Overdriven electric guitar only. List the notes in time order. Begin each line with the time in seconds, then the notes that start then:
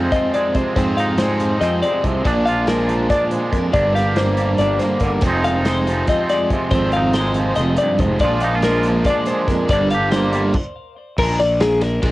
Already playing: F2 C3 F3 G#3 C4
0.75 F2 C3 F3 G#3 C4
2.24 A#2 F3 G#3 D4
3.72 G2 D3 G3 A#3 D4
5.21 F2 C3 F3 G#3 C4
6.71 F2 C3 F3 G#3 C4
8.20 A#2 F3 G#3 D4
9.68 G2 D3 G3 A#3 D4
11.19 A#2 F3 G#3 D4
11.40 muted overdriven electric guitar stroke
11.61 muted overdriven electric guitar stroke
11.81 muted overdriven electric guitar stroke
12.02 A#2 F3 G#3 D4